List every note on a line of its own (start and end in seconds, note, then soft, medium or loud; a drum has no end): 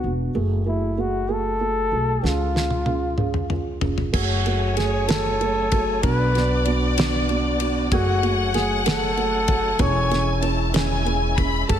0.00 0.33 E1 medium
0.00 0.13 F#4 medium
0.04 0.30 B3 medium
0.04 0.30 D4 soft
0.04 0.30 F#4 medium
0.34 1.88 F#1 medium
0.34 0.61 A3 medium
0.34 0.61 F#4 medium
0.34 0.61 G#4 medium
0.65 0.92 A3 medium
0.65 1.02 E4 medium
0.65 0.92 F#4 medium
0.65 0.92 G#4 medium
0.97 1.23 A3 medium
0.97 1.24 F#4 medium
0.97 1.34 F#4 medium
0.97 1.24 G#4 medium
1.28 1.55 A3 medium
1.28 1.55 F#4 medium
1.28 1.55 G#4 medium
1.32 2.27 A4 loud
1.60 1.86 A3 medium
1.60 1.87 F#4 medium
1.60 1.86 G#4 medium
1.92 2.21 B1 medium
1.92 2.18 A3 medium
1.92 2.18 F#4 medium
1.92 2.18 G#4 medium
2.22 3.78 C#2 medium
2.22 2.49 C#4 medium
2.22 2.49 F4 medium
2.22 3.83 F4 medium
2.22 2.49 G#4 medium
2.22 snare soft
2.54 2.81 C#4 medium
2.54 2.81 F4 medium
2.54 2.81 G#4 medium
2.54 snare medium
2.71 high tom soft
2.86 3.13 C#4 medium
2.86 3.13 F4 soft
2.86 3.13 G#4 medium
2.86 high tom medium
3.17 3.44 C#4 medium
3.17 3.44 F4 medium
3.17 3.44 G#4 medium
3.17 mid tom medium
3.34 mid tom medium
3.50 3.76 C#4 medium
3.50 3.76 F4 medium
3.50 3.77 G#4 medium
3.50 mid tom medium
3.81 4.12 F1 medium
3.81 4.07 C#4 medium
3.81 4.08 F4 soft
3.81 4.08 G#4 medium
3.81 floor tom medium
3.98 floor tom medium
4.13 5.99 F#1 medium
4.13 6.02 F#3 medium
4.13 4.39 A3 medium
4.13 6.02 A3 medium
4.13 6.02 C#4 medium
4.13 4.39 F#4 medium
4.13 4.79 F#4 medium
4.13 4.39 G#4 loud
4.13 6.00 C#5 medium
4.13 6.02 G#5 medium
4.13 kick loud
4.13 crash medium
4.46 4.72 A3 medium
4.46 4.72 F#4 medium
4.46 4.72 G#4 medium
4.46 ride soft
4.76 5.03 A3 medium
4.76 5.03 F#4 medium
4.76 5.03 G#4 medium
4.76 5.09 G#4 medium
4.76 snare soft
4.76 ride soft
5.07 5.34 A3 medium
5.07 5.34 F#4 medium
5.07 5.35 G#4 medium
5.07 6.03 A4 medium
5.07 snare loud
5.07 ride medium
5.40 5.66 A3 medium
5.40 5.66 F#4 medium
5.40 5.67 G#4 medium
5.40 ride soft
5.71 5.98 A3 medium
5.71 5.98 F#4 medium
5.71 5.98 G#4 medium
5.71 kick medium
5.71 ride medium
6.01 7.88 B1 loud
6.01 7.89 B3 medium
6.01 6.29 B3 medium
6.01 7.89 D4 medium
6.01 6.29 D4 medium
6.01 7.89 F#4 medium
6.01 6.29 F#4 loud
6.01 6.70 B4 loud
6.01 7.92 D5 loud
6.01 kick loud
6.01 ride medium
6.34 6.60 B3 medium
6.34 6.61 D4 medium
6.34 6.61 F#4 medium
6.34 snare soft
6.34 ride soft
6.65 6.91 B3 medium
6.65 6.92 D4 medium
6.65 6.92 F#4 medium
6.65 ride soft
6.97 7.23 B3 medium
6.97 7.23 D4 medium
6.97 7.23 F#4 loud
6.97 snare loud
6.97 ride medium
7.29 7.54 B3 medium
7.29 7.55 D4 medium
7.29 7.55 F#4 medium
7.29 ride soft
7.60 7.86 B3 medium
7.60 7.86 D4 medium
7.60 7.86 F#4 medium
7.60 ride medium
7.91 9.75 F#1 loud
7.91 9.78 F#3 medium
7.91 8.18 A3 medium
7.91 9.78 A3 medium
7.91 11.79 C#4 medium
7.91 8.18 F#4 medium
7.91 8.51 F#4 medium
7.91 8.18 G#4 loud
7.91 9.79 F#5 loud
7.91 9.78 G#5 medium
7.91 kick loud
7.91 ride medium
8.23 8.49 A3 medium
8.23 8.48 F#4 medium
8.23 8.48 G#4 medium
8.23 ride soft
8.54 8.80 A3 medium
8.54 8.80 F#4 medium
8.54 8.84 G#4 medium
8.54 8.80 G#4 medium
8.54 snare soft
8.54 ride soft
8.86 9.11 A3 medium
8.86 9.11 F#4 medium
8.86 9.11 G#4 loud
8.86 9.82 A4 loud
8.86 snare loud
8.86 ride medium
9.17 9.42 A3 medium
9.17 9.43 F#4 medium
9.17 ride soft
9.47 9.73 A3 medium
9.47 9.73 F#4 medium
9.47 9.74 G#4 medium
9.47 kick medium
9.47 ride medium
9.79 11.65 E1 loud
9.79 11.68 G#3 medium
9.79 10.05 C#4 medium
9.79 10.05 E4 medium
9.79 11.68 E4 medium
9.79 10.05 G#4 loud
9.79 10.51 C#5 loud
9.79 10.42 G#5 loud
9.79 kick loud
9.79 ride medium
10.11 10.36 C#4 medium
10.11 10.37 E4 medium
10.11 10.37 G#4 medium
10.11 snare soft
10.11 ride soft
10.41 10.68 C#4 medium
10.41 10.68 E4 medium
10.41 10.68 G#4 medium
10.41 10.73 A5 medium
10.41 ride soft
10.73 10.99 C#4 medium
10.73 11.00 E4 medium
10.73 11.00 G#4 medium
10.73 11.37 G#5 loud
10.73 snare loud
10.73 ride medium
11.05 11.31 C#4 medium
11.05 11.31 E4 medium
11.05 11.32 G#4 medium
11.05 ride soft
11.36 11.63 C#4 medium
11.36 11.63 E4 medium
11.36 11.64 G#4 medium
11.36 11.68 B5 loud
11.36 kick medium
11.36 ride medium
11.68 11.79 F#1 medium
11.68 11.79 F#3 medium
11.68 11.79 A3 medium
11.68 11.79 F#4 medium
11.68 11.79 G#4 loud
11.68 11.79 A4 medium
11.68 11.79 A5 loud
11.68 kick loud
11.68 ride medium